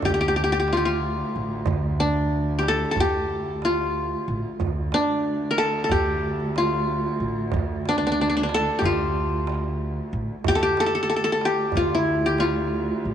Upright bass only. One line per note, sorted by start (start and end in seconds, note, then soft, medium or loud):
0.05 1.20 D2 medium
1.36 1.64 A1 medium
1.67 2.83 D2 medium
2.97 4.13 D2 medium
4.28 4.42 A1 medium
4.60 4.89 D2 medium
5.91 7.06 D2 medium
7.20 7.49 A1 medium
7.53 8.69 D2 medium
8.84 9.99 D2 medium
10.13 10.27 A1 medium
10.47 10.75 D2 medium
11.75 12.91 D2 medium
13.05 13.14 A1 medium